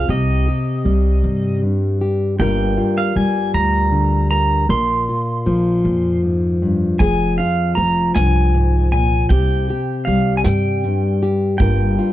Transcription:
Already playing: F5
0.08 C2 C3 G4 D#5
0.48 G4
0.85 C2 G3
1.24 G2
1.62 G2
2.01 G4
2.39 G1 G2 G3 A#3 F4 A#4 G5
2.78 F4
2.98 F5
3.16 G1 G3 G#5
3.54 D2 A#5
3.92 D3
4.31 A#4 A#5
4.69 A#1 A#2 A#4 C6
5.09 F4
5.46 A#1 F3
5.85 F2 A#2
6.23 G#2
6.62 G2
6.99 F1 F2 G#4 G#5, kick, closed hi-hat
7.38 F4 F5, closed hi-hat
7.75 F1 F3 A#5, closed hi-hat
8.15 C2 G2 G#5, snare, closed hi-hat
8.54 G#2, closed hi-hat
8.92 A#2 G#5, closed hi-hat
9.29 C2 C3 G4 G5, kick, closed hi-hat
9.69 G4, closed hi-hat
10.05 C2 G3 F5, closed hi-hat
10.37 G#5
10.44 G2 G5, snare, closed hi-hat
10.83 G2, closed hi-hat
11.22 G4, closed hi-hat
11.58 G1 G2 G3 A#3 F4 G5, kick, closed hi-hat
11.62 A#4
11.98 F4, closed hi-hat

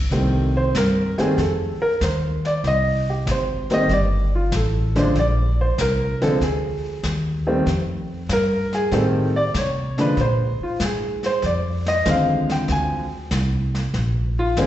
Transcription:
0.11 C2 D#3 G3 A3 C4, brush sweep, snare
0.57 C5
0.74 G2 A#4, kick, snare, hi-hat pedal
1.18 D#3 G3 A3 C4 G#4, muted upright bass stroke, snare
1.37 F2 A4, brush sweep, kick, snare
1.82 A#4, muted upright bass stroke
2.00 D#2 C5, kick, snare, hi-hat pedal
2.45 D5, snare
2.64 C2 D#5, brush sweep, kick, snare
3.10 G4
3.26 G#1, kick, snare, hi-hat pedal
3.31 C5
3.70 D#3 G3 A3 C4 D#5, snare
3.89 G1 D5, brush sweep, kick, snare
4.35 F4
4.52 A1, kick, snare, hi-hat pedal
4.56 A4
4.96 D3 F3 G#3 D4 C5, snare
5.15 A#1, brush sweep, kick, snare
5.19 D5
5.61 C5
5.78 C2 A#4, kick, snare, hi-hat pedal
6.21 D3 F3 G#3 C4 A4, snare
6.40 D2 G#4, brush sweep, kick, snare
7.03 D#2, kick, snare, hi-hat pedal
7.47 D#3 G3 A3 C4
7.66 F2, brush sweep, kick, snare
8.29 G2, kick, snare, hi-hat pedal
8.33 A#4
8.73 G#4, snare
8.91 A2 D#3 G3 A3 C4 A4, brush sweep, kick, snare
9.36 D5
9.54 C3 C#5, kick, snare, hi-hat pedal
9.98 D3 F3 G#3 D4 B4, snare
10.17 A#2, brush sweep, kick, snare
10.21 C5
10.60 F4, muted upright bass stroke
10.80 G#2, kick, snare, hi-hat pedal
10.85 G#4
11.23 C5, snare
11.42 F2 D5, brush sweep, kick, snare
11.86 D#5, snare
12.05 D#2 D3 F3 G#3 C4, kick, snare, hi-hat pedal
12.09 F5
12.49 G5, snare
12.68 D2 G#5, brush sweep, kick, snare
13.31 C2, kick, snare, hi-hat pedal
13.75 snare
13.94 A#1, brush sweep, kick, snare
14.39 F4
14.57 G#1 D3 F3 G#3 C4, kick, snare, hi-hat pedal
14.61 G#4

